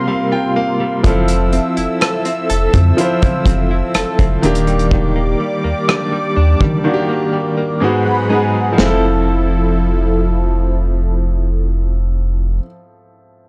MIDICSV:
0, 0, Header, 1, 6, 480
1, 0, Start_track
1, 0, Key_signature, -1, "major"
1, 0, Tempo, 967742
1, 516, Time_signature, 4, 2, 24, 8
1, 6690, End_track
2, 0, Start_track
2, 0, Title_t, "Analog synth pad"
2, 0, Program_c, 0, 89
2, 0, Note_on_c, 0, 70, 80
2, 0, Note_on_c, 0, 77, 72
2, 0, Note_on_c, 0, 84, 90
2, 496, Note_off_c, 0, 70, 0
2, 496, Note_off_c, 0, 77, 0
2, 496, Note_off_c, 0, 84, 0
2, 515, Note_on_c, 0, 69, 75
2, 517, Note_on_c, 0, 76, 75
2, 517, Note_on_c, 0, 88, 88
2, 2179, Note_off_c, 0, 69, 0
2, 2180, Note_off_c, 0, 76, 0
2, 2180, Note_off_c, 0, 88, 0
2, 2196, Note_on_c, 0, 86, 88
2, 2197, Note_on_c, 0, 74, 72
2, 2198, Note_on_c, 0, 67, 73
2, 3859, Note_off_c, 0, 86, 0
2, 3860, Note_off_c, 0, 67, 0
2, 3860, Note_off_c, 0, 74, 0
2, 3876, Note_on_c, 0, 78, 66
2, 3877, Note_on_c, 0, 68, 70
2, 3878, Note_on_c, 0, 83, 81
2, 4351, Note_off_c, 0, 78, 0
2, 4352, Note_off_c, 0, 68, 0
2, 4352, Note_off_c, 0, 83, 0
2, 4359, Note_on_c, 0, 64, 70
2, 4360, Note_on_c, 0, 53, 74
2, 4360, Note_on_c, 0, 69, 81
2, 6250, Note_off_c, 0, 53, 0
2, 6250, Note_off_c, 0, 64, 0
2, 6250, Note_off_c, 0, 69, 0
2, 6690, End_track
3, 0, Start_track
3, 0, Title_t, "Grand piano"
3, 0, Program_c, 1, 0
3, 0, Control_c, 1, 64, 127
3, 0, Note_on_c, 1, 48, 82
3, 0, Note_on_c, 1, 60, 78
3, 0, Note_on_c, 1, 65, 77
3, 0, Note_on_c, 1, 70, 91
3, 40, Note_on_c, 1, 77, 74
3, 150, Note_off_c, 1, 77, 0
3, 160, Note_on_c, 1, 79, 70
3, 240, Note_off_c, 1, 48, 0
3, 243, Note_off_c, 1, 60, 0
3, 246, Note_off_c, 1, 65, 0
3, 248, Note_off_c, 1, 70, 0
3, 270, Note_off_c, 1, 79, 0
3, 280, Note_on_c, 1, 77, 76
3, 501, Note_off_c, 1, 77, 0
3, 513, Note_on_c, 1, 53, 81
3, 518, Note_on_c, 1, 60, 74
3, 523, Control_c, 1, 64, 0
3, 523, Note_on_c, 1, 64, 74
3, 529, Note_on_c, 1, 69, 90
3, 621, Control_c, 1, 64, 127
3, 1109, Note_off_c, 1, 53, 0
3, 1112, Note_off_c, 1, 60, 0
3, 1115, Note_off_c, 1, 64, 0
3, 1117, Note_off_c, 1, 69, 0
3, 1472, Note_on_c, 1, 53, 82
3, 1478, Note_on_c, 1, 60, 80
3, 1484, Note_on_c, 1, 64, 78
3, 1490, Note_on_c, 1, 72, 92
3, 1920, Note_off_c, 1, 53, 0
3, 1923, Note_off_c, 1, 60, 0
3, 1926, Note_off_c, 1, 64, 0
3, 1929, Note_off_c, 1, 72, 0
3, 2194, Note_on_c, 1, 51, 90
3, 2197, Note_on_c, 1, 58, 80
3, 2202, Control_c, 1, 64, 0
3, 2204, Note_on_c, 1, 62, 78
3, 2209, Note_on_c, 1, 67, 98
3, 2305, Control_c, 1, 64, 127
3, 2963, Note_off_c, 1, 51, 0
3, 2965, Note_off_c, 1, 58, 0
3, 2968, Note_off_c, 1, 62, 0
3, 2970, Note_off_c, 1, 67, 0
3, 3393, Note_on_c, 1, 51, 83
3, 3397, Note_on_c, 1, 58, 71
3, 3403, Note_on_c, 1, 62, 73
3, 3408, Note_on_c, 1, 66, 72
3, 3434, Note_off_c, 1, 66, 0
3, 3441, Note_on_c, 1, 67, 94
3, 3840, Note_off_c, 1, 51, 0
3, 3843, Note_off_c, 1, 58, 0
3, 3845, Note_off_c, 1, 62, 0
3, 3864, Note_off_c, 1, 67, 0
3, 3871, Note_on_c, 1, 44, 86
3, 3876, Note_on_c, 1, 56, 79
3, 3881, Note_on_c, 1, 59, 75
3, 3882, Control_c, 1, 64, 0
3, 3888, Note_on_c, 1, 66, 94
3, 3957, Control_c, 1, 64, 127
3, 4066, Note_off_c, 1, 44, 0
3, 4068, Note_off_c, 1, 56, 0
3, 4071, Note_off_c, 1, 59, 0
3, 4074, Note_off_c, 1, 66, 0
3, 4114, Note_on_c, 1, 44, 77
3, 4118, Note_on_c, 1, 56, 69
3, 4123, Note_on_c, 1, 59, 66
3, 4128, Note_on_c, 1, 68, 77
3, 4264, Note_off_c, 1, 44, 0
3, 4266, Note_off_c, 1, 56, 0
3, 4268, Note_off_c, 1, 59, 0
3, 4271, Note_off_c, 1, 68, 0
3, 4328, Note_on_c, 1, 53, 75
3, 4349, Note_on_c, 1, 60, 66
3, 4363, Control_c, 1, 64, 0
3, 4371, Note_on_c, 1, 64, 68
3, 4393, Note_on_c, 1, 69, 84
3, 4445, Control_c, 1, 64, 127
3, 6218, Note_off_c, 1, 53, 0
3, 6239, Note_off_c, 1, 60, 0
3, 6261, Note_off_c, 1, 64, 0
3, 6283, Note_off_c, 1, 69, 0
3, 6690, End_track
4, 0, Start_track
4, 0, Title_t, "Clean electric guitar"
4, 0, Program_c, 2, 27
4, 0, Note_on_c, 2, 48, 87
4, 0, Note_on_c, 2, 58, 59
4, 0, Note_on_c, 2, 65, 65
4, 38, Note_on_c, 2, 55, 69
4, 156, Note_off_c, 2, 65, 0
4, 158, Note_on_c, 2, 65, 66
4, 273, Note_off_c, 2, 58, 0
4, 279, Note_on_c, 2, 58, 66
4, 392, Note_off_c, 2, 55, 0
4, 398, Note_on_c, 2, 55, 66
4, 516, Note_off_c, 2, 55, 0
4, 518, Note_on_c, 2, 53, 80
4, 565, Note_off_c, 2, 48, 0
4, 565, Note_off_c, 2, 58, 0
4, 637, Note_off_c, 2, 65, 0
4, 639, Note_on_c, 2, 64, 56
4, 759, Note_on_c, 2, 60, 59
4, 872, Note_off_c, 2, 64, 0
4, 878, Note_on_c, 2, 64, 60
4, 998, Note_on_c, 2, 69, 62
4, 1112, Note_off_c, 2, 60, 0
4, 1118, Note_on_c, 2, 60, 59
4, 1233, Note_off_c, 2, 69, 0
4, 1239, Note_on_c, 2, 69, 67
4, 1354, Note_off_c, 2, 60, 0
4, 1360, Note_on_c, 2, 60, 56
4, 1472, Note_off_c, 2, 53, 0
4, 1478, Note_on_c, 2, 53, 82
4, 1593, Note_off_c, 2, 64, 0
4, 1599, Note_on_c, 2, 64, 56
4, 1713, Note_off_c, 2, 60, 0
4, 1719, Note_on_c, 2, 60, 56
4, 1834, Note_off_c, 2, 64, 0
4, 1840, Note_on_c, 2, 64, 56
4, 1954, Note_off_c, 2, 69, 0
4, 1960, Note_on_c, 2, 69, 68
4, 2072, Note_off_c, 2, 60, 0
4, 2078, Note_on_c, 2, 60, 57
4, 2197, Note_on_c, 2, 51, 81
4, 2245, Note_off_c, 2, 53, 0
4, 2245, Note_off_c, 2, 60, 0
4, 2246, Note_off_c, 2, 64, 0
4, 2246, Note_off_c, 2, 69, 0
4, 2319, Note_on_c, 2, 55, 57
4, 2436, Note_off_c, 2, 51, 0
4, 2438, Note_on_c, 2, 51, 83
4, 2559, Note_on_c, 2, 58, 57
4, 2673, Note_off_c, 2, 55, 0
4, 2679, Note_on_c, 2, 55, 59
4, 2793, Note_off_c, 2, 58, 0
4, 2798, Note_on_c, 2, 58, 59
4, 2917, Note_on_c, 2, 62, 64
4, 3031, Note_off_c, 2, 55, 0
4, 3037, Note_on_c, 2, 55, 57
4, 3151, Note_off_c, 2, 62, 0
4, 3157, Note_on_c, 2, 62, 65
4, 3271, Note_off_c, 2, 55, 0
4, 3277, Note_on_c, 2, 55, 58
4, 3390, Note_off_c, 2, 51, 0
4, 3396, Note_on_c, 2, 51, 78
4, 3511, Note_off_c, 2, 58, 0
4, 3517, Note_on_c, 2, 58, 57
4, 3630, Note_off_c, 2, 55, 0
4, 3636, Note_on_c, 2, 55, 58
4, 3751, Note_off_c, 2, 58, 0
4, 3757, Note_on_c, 2, 58, 54
4, 3877, Note_on_c, 2, 44, 77
4, 3924, Note_off_c, 2, 51, 0
4, 3924, Note_off_c, 2, 55, 0
4, 3924, Note_off_c, 2, 62, 0
4, 3925, Note_off_c, 2, 58, 0
4, 3997, Note_on_c, 2, 54, 54
4, 4116, Note_on_c, 2, 63, 66
4, 4230, Note_off_c, 2, 54, 0
4, 4236, Note_on_c, 2, 54, 55
4, 4330, Note_off_c, 2, 54, 0
4, 4332, Note_on_c, 2, 53, 67
4, 4365, Note_on_c, 2, 60, 79
4, 4390, Note_off_c, 2, 63, 0
4, 4392, Note_on_c, 2, 64, 84
4, 4404, Note_off_c, 2, 44, 0
4, 4416, Note_on_c, 2, 69, 79
4, 6241, Note_off_c, 2, 53, 0
4, 6275, Note_off_c, 2, 60, 0
4, 6302, Note_off_c, 2, 64, 0
4, 6326, Note_off_c, 2, 69, 0
4, 6690, End_track
5, 0, Start_track
5, 0, Title_t, "Sub bass"
5, 0, Program_c, 3, 38
5, 518, Note_on_c, 3, 29, 99
5, 791, Note_off_c, 3, 29, 0
5, 881, Note_on_c, 3, 29, 50
5, 927, Note_off_c, 3, 29, 0
5, 1241, Note_on_c, 3, 29, 88
5, 1330, Note_off_c, 3, 29, 0
5, 1360, Note_on_c, 3, 41, 92
5, 1450, Note_off_c, 3, 41, 0
5, 1715, Note_on_c, 3, 29, 98
5, 1898, Note_off_c, 3, 29, 0
5, 1960, Note_on_c, 3, 29, 49
5, 2007, Note_off_c, 3, 29, 0
5, 2079, Note_on_c, 3, 29, 84
5, 2169, Note_off_c, 3, 29, 0
5, 2200, Note_on_c, 3, 27, 99
5, 2655, Note_off_c, 3, 27, 0
5, 2799, Note_on_c, 3, 39, 49
5, 2846, Note_off_c, 3, 39, 0
5, 3158, Note_on_c, 3, 39, 82
5, 3249, Note_off_c, 3, 39, 0
5, 3279, Note_on_c, 3, 51, 94
5, 3369, Note_off_c, 3, 51, 0
5, 4358, Note_on_c, 3, 29, 97
5, 6248, Note_off_c, 3, 29, 0
5, 6690, End_track
6, 0, Start_track
6, 0, Title_t, "Drums"
6, 517, Note_on_c, 9, 36, 100
6, 517, Note_on_c, 9, 42, 68
6, 567, Note_off_c, 9, 36, 0
6, 567, Note_off_c, 9, 42, 0
6, 635, Note_on_c, 9, 42, 60
6, 685, Note_off_c, 9, 42, 0
6, 757, Note_on_c, 9, 42, 47
6, 806, Note_off_c, 9, 42, 0
6, 878, Note_on_c, 9, 42, 47
6, 927, Note_off_c, 9, 42, 0
6, 998, Note_on_c, 9, 42, 80
6, 1002, Note_on_c, 9, 37, 112
6, 1047, Note_off_c, 9, 42, 0
6, 1051, Note_off_c, 9, 37, 0
6, 1117, Note_on_c, 9, 42, 47
6, 1166, Note_off_c, 9, 42, 0
6, 1238, Note_on_c, 9, 42, 61
6, 1288, Note_off_c, 9, 42, 0
6, 1357, Note_on_c, 9, 42, 52
6, 1358, Note_on_c, 9, 36, 87
6, 1406, Note_off_c, 9, 42, 0
6, 1408, Note_off_c, 9, 36, 0
6, 1478, Note_on_c, 9, 42, 60
6, 1528, Note_off_c, 9, 42, 0
6, 1598, Note_on_c, 9, 42, 52
6, 1601, Note_on_c, 9, 36, 94
6, 1648, Note_off_c, 9, 42, 0
6, 1650, Note_off_c, 9, 36, 0
6, 1714, Note_on_c, 9, 36, 95
6, 1717, Note_on_c, 9, 42, 64
6, 1764, Note_off_c, 9, 36, 0
6, 1766, Note_off_c, 9, 42, 0
6, 1956, Note_on_c, 9, 42, 66
6, 1959, Note_on_c, 9, 37, 95
6, 2006, Note_off_c, 9, 42, 0
6, 2008, Note_off_c, 9, 37, 0
6, 2077, Note_on_c, 9, 42, 50
6, 2078, Note_on_c, 9, 36, 90
6, 2127, Note_off_c, 9, 42, 0
6, 2128, Note_off_c, 9, 36, 0
6, 2198, Note_on_c, 9, 42, 58
6, 2248, Note_off_c, 9, 42, 0
6, 2257, Note_on_c, 9, 42, 48
6, 2307, Note_off_c, 9, 42, 0
6, 2318, Note_on_c, 9, 42, 43
6, 2367, Note_off_c, 9, 42, 0
6, 2377, Note_on_c, 9, 42, 35
6, 2427, Note_off_c, 9, 42, 0
6, 2437, Note_on_c, 9, 36, 96
6, 2487, Note_off_c, 9, 36, 0
6, 2920, Note_on_c, 9, 37, 112
6, 2970, Note_off_c, 9, 37, 0
6, 3277, Note_on_c, 9, 36, 85
6, 3326, Note_off_c, 9, 36, 0
6, 4357, Note_on_c, 9, 38, 93
6, 4406, Note_off_c, 9, 38, 0
6, 6690, End_track
0, 0, End_of_file